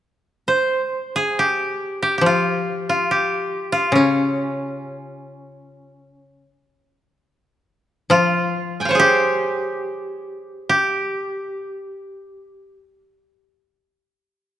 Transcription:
0.48 C5
1.16 G#4
1.39 G4
2.02 G4
2.18 F3 G4
2.26 F4
2.89 F4
3.11 G4
3.72 F4
3.92 C#3 C#4
8.10 F3 F4
8.80 G5 G#5
8.85 C#5 F5
8.91 C5
8.95 G#4
8.99 G4
10.69 G4

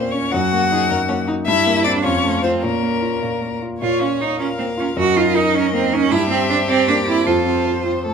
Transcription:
Already playing: A#2 A#3 C4 C#4 C5
0.12 C#4 C#5
0.31 F#2 D#4 F#4 F#5
0.51 A#3 F#4
0.70 D#4 G#4
0.90 F#2 A#4
1.08 A#3 C#4
1.27 D#4
1.46 G2 E4 E5
1.66 A#3
1.84 C4 D4 C5 D5
2.04 F2 C#4 F4 C#5
2.24 A3
2.43 C4 F4 C5
2.63 A#2 A#3 C#4 A#4
2.83 A#3
3.02 F4
3.22 A#2
3.41 A#3
3.62 F4
3.80 A#2 F4 C#5
4.01 C#4 F4
4.21 D#4 C#5
4.39 C#4 F4 A#4 F5
4.59 A#3 C4
4.77 C#4 F4
4.97 F#2 F#4 A#4 D#5
5.17 D#4 F4
5.35 D#4 A#4
5.54 C#4 D#4
5.73 A#3 C4
5.93 C#4 D#4
6.11 G2 E4 G4 E5
6.30 C4
6.50 D4 C5
6.69 C4 D5
6.88 A#3 D4
7.07 C4 E4
7.26 F2 F4 A4 C5
7.46 C4
7.67 C5
7.85 C4 C5
8.05 A3 A4

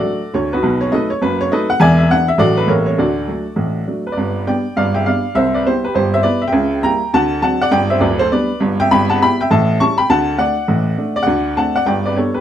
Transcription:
Already playing: F#4 A4 D5
0.03 F#3 A3 D4
0.33 D2 D3 C#5
0.53 D#4 F#4 B4
0.63 B1 B2
0.81 C#5
0.92 F#3 A3 D#4 A4 B4 D#5
1.10 C#5
1.22 F#1 F#2 B4
1.41 C#5
1.51 F#3 A3 D#4 A4 B4 D#5
1.70 F#5
1.80 E1 E2 D5 E5 G#5
1.99 E5
2.10 E3 B3 D4 F#5
2.28 E5
2.38 A1 A2 F#3 A3 D4 F#4 A4 D5
2.57 B4
2.67 A1 A2 G3 A#3 E4 A4 A#4 C#5
2.86 C#5
2.98 D2 D3 F#4 A4 D5
3.28 F#3 A3 D4
3.56 A1 A2
3.87 F#3 A3 D4
4.07 B4
4.12 B4 D5
4.17 G1 G2
4.46 G3 B3 D4 D5 G5
4.76 G1 G2 D5 F5
4.94 E5 G5
5.06 G3 B3 D4 D5 F5
5.35 C2 C3 C5 E5
5.54 B4 D5
5.66 G3 B3 E4 G4 C5
5.84 G4 B4
5.95 G1 G2 G4 C5
6.14 C5 E5
6.23 G3 B3 E4 B4 D5
6.42 E5
6.48 E5 G5
6.52 C#2 C#3
6.83 G3 A#3 E4 G5 A#5
7.14 D2 D3 F#5 A5
7.42 F#3 C4 D4 F#5 A5
7.62 D5 F#5
7.71 G1 G2 D5 G5
7.90 C5 E5
8.00 D1 D2 B4 D5
8.19 A4 C5
8.31 G3 B3 D4 B4 D5
8.60 G1 G2
8.80 E5 G5
8.91 G1 G2 G5 B5
9.09 F#5 A5
9.21 G3 B3 E4 G5 B5
9.41 E5 G5
9.51 A1 A2 E5 A5
9.80 G3 C#4 E4 A5 C#6
9.98 G5 B5
10.09 D2 D3 F#5 A5
10.38 A3 D4 D5 F#5
10.68 A1 A2
10.98 A3 D4
11.16 D5
11.23 D3 D5 F#5
11.27 D2
11.57 A3 C4 D4 F#5 A5
11.76 D5 F#5
11.86 G1 G2 D5 G5
12.06 B4 D5
12.16 G3 B3 D4 A4 C#5
12.34 G4 B4

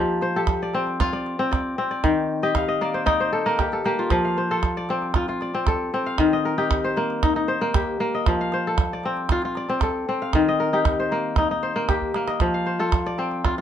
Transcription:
Already playing: F3 A#3 D#4 F4 G4 A#4 C5 D#5
0.22 C5, calabash click
0.36 G4 A4
0.47 calabash thump, calabash click
0.62 D5
0.74 C4, calabash click
0.87 calabash click
1.00 F4, calabash thump, calabash click
1.13 D5, calabash click
1.26 calabash click
1.39 C4, calabash click
1.51 D5, calabash thump, calabash click
1.78 C4
1.91 D5
2.04 D#3, calabash thump, calabash click
2.43 G4 D#5, calabash click
2.55 F5, calabash thump, calabash click
2.68 D#5
2.81 A#3 D5, calabash click
2.94 C5, calabash click
3.06 D#4 D5, calabash thump, calabash click
3.20 C5
3.33 A4, calabash click
3.46 A#3 A#4, calabash click
3.59 G4, calabash thump, calabash click
3.72 A4, calabash click
3.85 A#3 G4, calabash click
3.99 F4
4.10 F3, calabash thump, calabash click
4.25 F5
4.37 C5, calabash click
4.51 F4 A4
4.63 calabash thump, calabash click
4.77 D5
4.89 C4, calabash click
5.02 calabash click
5.14 F4, calabash thump, calabash click
5.28 F4, calabash click
5.41 D5, calabash click
5.54 C4, calabash click
5.67 A4, calabash thump, calabash click
5.94 C4
6.06 F5
6.18 D#3, calabash thump, calabash click
6.33 D#5
6.45 A#4
6.58 D#4 G4
6.71 calabash thump, calabash click
6.84 C5
6.97 A#3, calabash click
7.10 calabash click
7.23 D#4, calabash thump, calabash click
7.36 D#4, calabash click
7.48 C5, calabash click
7.61 A#3, calabash click
7.74 G4, calabash thump, calabash click
8.00 A#3
8.14 D#5
8.26 F3, calabash thump, calabash click
8.41 F5
8.52 C5, calabash click
8.67 A4
8.78 calabash thump, calabash click
8.93 D5
9.04 C4, calabash click
9.17 calabash click
9.29 F4, calabash thump, calabash click
9.42 F4, calabash click
9.55 D5, calabash click
9.69 C4, calabash click
9.81 A4, calabash thump, calabash click
10.09 C4
10.22 F5
10.33 D#3, calabash thump, calabash click
10.48 D#5
10.60 A#4
10.73 D#4 G4
10.85 calabash thump, calabash click
11.00 C5
11.12 A#3, calabash click
11.36 D#4, calabash thump, calabash click
11.50 D#4, calabash click
11.63 C5, calabash click
11.76 A#3
11.89 G4, calabash thump, calabash click
12.02 calabash thump
12.14 A#3, calabash click
12.28 D#5, calabash click
12.40 F3, calabash thump, calabash click
12.54 F5
12.66 C5, calabash click
12.79 F4 A4
12.92 calabash thump, calabash click
13.06 D5
13.18 C4, calabash click
13.31 calabash click
13.45 F4, calabash thump, calabash click
13.58 F4

